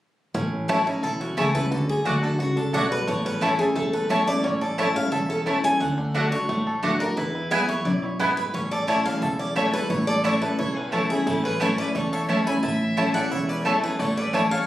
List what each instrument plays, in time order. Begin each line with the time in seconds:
0.34 upright bass A1, steel-string acoustic guitar A2, five-string banjo C#4
0.68 steel-string acoustic guitar E3 A3 C#4 E4 F#4, mandolin A3 E4 C#5 A5, five-string banjo E4
0.86 five-string banjo C#4, steel-string acoustic guitar C#4 D#4 E4
1.03 upright bass B1, steel-string acoustic guitar E2 E4, five-string banjo A4
1.21 five-string banjo C#4, steel-string acoustic guitar F#4
1.37 upright bass C#2, steel-string acoustic guitar E3 A3 C#4 E4 G#4, mandolin A3 E4 C#5 A5, five-string banjo E4
1.55 steel-string acoustic guitar C#4 E4 B4, five-string banjo A4
1.71 upright bass D2, steel-string acoustic guitar D3 A4, five-string banjo F#4
1.89 steel-string acoustic guitar G#4
2.05 upright bass D2, steel-string acoustic guitar D3 A3 D4 F#4, mandolin A3 F#4 D5 F#5, five-string banjo F#4
2.22 steel-string acoustic guitar D4 E4 F#4, five-string banjo A4
2.39 upright bass C#2, steel-string acoustic guitar C#3 F#4, five-string banjo F#4
2.56 five-string banjo D4, steel-string acoustic guitar A4
2.73 upright bass B1, steel-string acoustic guitar B2 C#5, mandolin A3 F#4 D5 F#5, five-string banjo A4
2.91 five-string banjo F#4, steel-string acoustic guitar B4
3.07 upright bass A1, steel-string acoustic guitar A2 C#5, five-string banjo A3
3.25 five-string banjo C#4, steel-string acoustic guitar B4
3.41 steel-string acoustic guitar E3 A3 C#4 E4 A4, mandolin A3 E4 C#5 A5, five-string banjo E4
3.58 steel-string acoustic guitar C#4 E4 G#4, five-string banjo A4
3.75 upright bass E1, steel-string acoustic guitar E2 A4, five-string banjo A3
3.93 five-string banjo A4, steel-string acoustic guitar B4
4.09 steel-string acoustic guitar E3 A3 C#4 E4 C#5, mandolin A3 E4 C#5 A5, five-string banjo A3
4.27 steel-string acoustic guitar C#4 E4 D5, five-string banjo E4
4.44 upright bass A1, steel-string acoustic guitar A2 C#5, five-string banjo C#4
4.61 five-string banjo A4, steel-string acoustic guitar D5
4.78 steel-string acoustic guitar E3 A3 C#4 E4 E5, mandolin A3 E4 C#5 A5, five-string banjo E4
4.95 five-string banjo C#4, steel-string acoustic guitar C#4 E4 F5
5.12 upright bass E1, steel-string acoustic guitar E2 E5, five-string banjo A4
5.29 five-string banjo C#4, steel-string acoustic guitar A4
5.46 steel-string acoustic guitar E3 A3 C#4 E4, mandolin A3 E4 C#5 A5, five-string banjo E4
5.63 steel-string acoustic guitar C#4 E4 G#5, five-string banjo A4
5.80 upright bass D2, steel-string acoustic guitar D3 F#5, five-string banjo A3
5.98 five-string banjo D4
6.14 steel-string acoustic guitar D3 A3 D4 F#4, mandolin A3 F#4 D5 F#5, five-string banjo F#4
6.32 five-string banjo D4, steel-string acoustic guitar D4 F#4 C#5
6.49 upright bass A1, steel-string acoustic guitar A2, five-string banjo A3
6.67 five-string banjo A4
6.83 steel-string acoustic guitar D3 A3 D4 F#4, mandolin A3 F#4 D5 F#5, five-string banjo D4
7.00 steel-string acoustic guitar D4 F#4 A#4, five-string banjo F#4
7.17 steel-string acoustic guitar E2 B4, upright bass E2, five-string banjo E4
7.35 five-string banjo E4
7.50 steel-string acoustic guitar E3 G#3 B3 E4 E5, mandolin B3 E4 B4 G#5, five-string banjo E4
7.68 steel-string acoustic guitar B3 E4 C#5, five-string banjo E4
7.85 upright bass B1, steel-string acoustic guitar F#2 D5, five-string banjo E4
8.03 five-string banjo E4, steel-string acoustic guitar C#5
8.19 steel-string acoustic guitar G#2 C5, mandolin B3 E4 B4 G#5, five-string banjo E4
8.37 five-string banjo E4, steel-string acoustic guitar B4
8.54 upright bass A1, steel-string acoustic guitar A2 C#5, five-string banjo C#4
8.71 five-string banjo A4, steel-string acoustic guitar D5
8.87 steel-string acoustic guitar E3 A3 C#4 E4 E5, mandolin A3 E4 C#5 A5, five-string banjo E4
9.05 five-string banjo C#4, steel-string acoustic guitar F5
9.21 upright bass E1, steel-string acoustic guitar E2 E5, five-string banjo A4
9.39 five-string banjo C#4, steel-string acoustic guitar D5
9.55 steel-string acoustic guitar E3 A3 C#4 E4 C#5, mandolin A3 E4 C#5 A5, five-string banjo E4
9.73 five-string banjo A4, steel-string acoustic guitar B4
9.90 upright bass A1, steel-string acoustic guitar A2 C#5, five-string banjo E4
10.07 five-string banjo A4, steel-string acoustic guitar D5
10.24 steel-string acoustic guitar E3 A3 C#4 E4 C#5, mandolin A3 E4 C#5 A5, five-string banjo E4
10.42 steel-string acoustic guitar C#4 E4 B4, five-string banjo A4
10.58 upright bass E1, steel-string acoustic guitar E2 C#5, five-string banjo E4, fiddle A4
10.75 five-string banjo C#4, fiddle G#4, steel-string acoustic guitar B4
10.92 steel-string acoustic guitar E3 A3 C#4 E4 A4, mandolin A3 E4 C#5 A5, fiddle E4, five-string banjo A4
11.10 steel-string acoustic guitar C#4 E4 G#4, five-string banjo E4, fiddle E4
11.27 upright bass A1, steel-string acoustic guitar A2 A4, five-string banjo A3, fiddle E4
11.44 five-string banjo C#4, fiddle G#4, steel-string acoustic guitar B4
11.60 steel-string acoustic guitar E3 A3 C#4 E4 C#5, mandolin A3 E4 C#5 A5, five-string banjo E4, fiddle A4
11.78 five-string banjo C#4, steel-string acoustic guitar C#4 E4 D5, fiddle B4
11.95 upright bass E1, steel-string acoustic guitar E2 C#5, five-string banjo A3, fiddle A4
12.12 five-string banjo A4, fiddle C#5, steel-string acoustic guitar E5
12.28 steel-string acoustic guitar E3 A3 C#4 E4, mandolin A3 E4 C#5 A5, five-string banjo C#4
12.46 steel-string acoustic guitar C#4 E4 B5, five-string banjo E4, fiddle G#5
12.63 upright bass A1, steel-string acoustic guitar A2 A5, five-string banjo E4, fiddle E5
12.97 steel-string acoustic guitar E3 A3 C#4 E4, mandolin A3 E4 C#5 A5, five-string banjo E4
13.14 steel-string acoustic guitar C#4 E4 F#5, five-string banjo A4, fiddle D5
13.31 upright bass E1, steel-string acoustic guitar E2 E5, five-string banjo E4, fiddle C#5
13.48 five-string banjo C#4, fiddle B4, steel-string acoustic guitar D5
13.65 steel-string acoustic guitar E3 A3 C#4 E4 C#5, mandolin A3 E4 C#5 A5, fiddle A4, five-string banjo A4
13.82 steel-string acoustic guitar C#4 E4 B4, five-string banjo E4, fiddle G#4
13.99 upright bass A1, steel-string acoustic guitar A2 C#5, five-string banjo A3, fiddle A4
14.17 five-string banjo C#4, fiddle B4, steel-string acoustic guitar D5
14.33 steel-string acoustic guitar E3 A3 C#4 E4 E5, mandolin A3 E4 C#5 A5, five-string banjo E4, fiddle C#5
14.51 five-string banjo A4, fiddle C#5, steel-string acoustic guitar F5